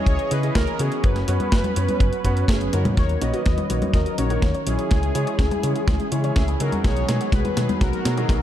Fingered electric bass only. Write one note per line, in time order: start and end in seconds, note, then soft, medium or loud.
0.06 0.16 C#2 medium
0.31 0.49 C#3 loud
0.55 0.64 C#2 medium
0.79 0.88 C#3 medium
1.04 1.22 F#1 medium
1.28 1.37 F#2 loud
1.52 1.61 F#1 medium
1.76 1.85 F#2 medium
2.00 2.09 F#1 loud
2.25 2.42 F#2 loud
2.48 2.66 F#1 loud
2.73 2.82 F#2 loud
2.97 3.15 D#2 loud
3.21 3.30 A#1 medium
3.46 3.55 D#2 medium
3.70 3.79 A#1 medium
3.94 4.03 D#2 medium
4.18 4.36 A#1 loud
4.42 4.51 D#2 medium
4.67 4.76 A#1 medium
4.91 5.09 C#2 loud
5.15 5.24 C#3 loud
5.39 5.48 C#2 medium
5.64 5.72 C#3 medium
5.88 5.97 C#2 loud
6.12 6.30 C#3 medium
6.36 6.54 C#2 loud
6.60 6.69 C#3 loud
6.84 7.02 B1 loud
7.09 7.17 B2 loud
7.32 7.41 B1 medium
7.57 7.66 B2 medium
7.81 7.90 B1 medium
8.05 8.23 B2 loud
8.29 8.38 B1 medium